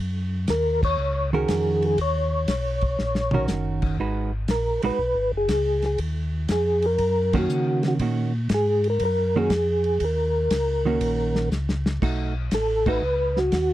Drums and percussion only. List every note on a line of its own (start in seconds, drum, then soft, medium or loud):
0.47 kick soft
0.47 snare medium
0.47 hi-hat pedal medium
0.47 ride medium
0.83 kick medium
0.83 crash medium
1.48 kick soft
1.48 snare medium
1.48 hi-hat pedal medium
1.48 ride medium
1.82 ride soft
1.98 kick soft
1.98 ride medium
2.48 kick soft
2.48 snare medium
2.48 hi-hat pedal soft
2.48 ride medium
2.81 kick medium
2.81 ride soft
2.99 snare soft
3.15 snare medium
3.31 mid tom medium
3.48 snare medium
3.48 hi-hat pedal medium
3.82 kick medium
3.82 crash medium
3.99 kick soft
4.48 kick soft
4.48 snare medium
4.48 hi-hat pedal medium
4.48 ride medium
4.82 ride medium
4.99 kick soft
5.49 kick soft
5.49 snare medium
5.49 hi-hat pedal medium
5.49 ride medium
5.82 snare soft
5.82 ride soft
5.98 kick soft
5.98 ride medium
6.49 kick soft
6.49 snare medium
6.49 hi-hat pedal medium
6.49 ride medium
6.82 ride soft
6.98 kick soft
6.98 ride medium
7.33 kick medium
7.33 crash medium
7.49 hi-hat pedal medium
7.83 snare soft
7.83 ride soft
7.99 kick soft
7.99 ride medium
8.49 kick soft
8.49 snare medium
8.49 hi-hat pedal medium
8.49 ride medium
8.84 ride soft
9.00 kick soft
9.00 ride medium
9.50 kick soft
9.50 snare medium
9.50 hi-hat pedal medium
9.50 ride medium
9.84 ride soft
10.00 kick soft
10.00 ride medium
10.51 kick soft
10.51 snare medium
10.51 hi-hat pedal medium
10.51 ride medium
11.01 kick soft
11.01 ride medium
11.35 snare soft
11.52 snare medium
11.52 hi-hat pedal medium
11.69 snare medium
11.86 snare medium
12.02 kick medium
12.02 crash medium
12.51 kick soft
12.51 snare medium
12.51 hi-hat pedal medium
12.51 ride medium
12.86 kick medium
12.86 crash medium
13.37 snare soft
13.52 kick soft
13.52 snare medium
13.52 hi-hat pedal medium
13.52 ride medium